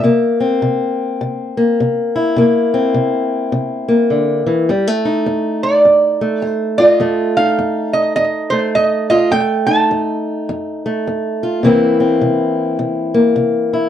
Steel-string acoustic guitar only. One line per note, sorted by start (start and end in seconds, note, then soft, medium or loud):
0.04 0.58 C3 medium
0.04 1.56 A#3 medium
0.40 2.41 C4 medium
0.62 1.16 C3 medium
1.21 1.74 C3 medium
1.57 2.34 A#3 medium
1.80 2.33 C3 medium
2.16 4.69 E4 medium
2.36 2.90 C3 medium
2.36 3.87 A#3 medium
2.74 5.05 C4 medium
2.94 3.48 C3 medium
3.52 4.06 C3 medium
3.88 4.66 A#3 medium
4.10 4.46 D3 soft
4.46 4.68 E3 medium
4.69 5.22 F2 medium
4.69 4.87 G3 medium
4.87 6.20 A3 soft
5.05 7.03 D#4 medium
5.26 5.80 F2 medium
5.85 6.38 F2 medium
6.21 7.00 A3 soft
6.42 6.96 F2 medium
6.80 7.40 F4 medium
7.00 7.54 F2 medium
7.00 8.51 A3 medium
7.37 9.30 D#4 soft
7.59 8.12 F2 medium
8.17 8.70 F2 medium
8.52 9.29 A3 soft
8.76 9.29 F2 medium
9.11 9.30 F4 medium
9.31 9.85 F2 medium
9.31 10.84 A3 medium
9.68 11.61 D#4 medium
9.91 10.44 F2 medium
10.49 11.02 F2 medium
10.86 11.62 A3 medium
11.07 11.60 F2 medium
11.43 11.62 F4 medium
11.63 12.17 C3 medium
11.63 13.89 E3 medium
11.63 13.13 A#3 medium
11.63 11.99 C4 medium
11.63 13.72 E4 medium
12.00 13.89 C4 medium
12.21 12.75 C3 medium
12.79 13.33 C3 medium
13.14 13.89 A#3 medium
13.36 13.89 C3 medium
13.73 13.89 E4 medium